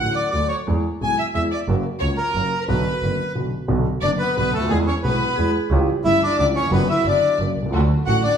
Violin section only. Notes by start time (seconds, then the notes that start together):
0.00 F#5
0.15 D5
0.30 D5
0.50 C#5
1.03 G#5
1.18 E5
1.35 E5
1.51 D5
2.00 C#5
2.17 A#4
2.59 A#4
2.67 B4
4.01 D5
4.19 B4
4.34 B4
4.53 A4
4.70 G#4
4.88 C#5
5.06 B4
6.07 E5
6.25 D5
6.40 D5
6.55 C#5
6.72 B4
6.89 E5
7.08 D5
8.07 F#5
8.25 D5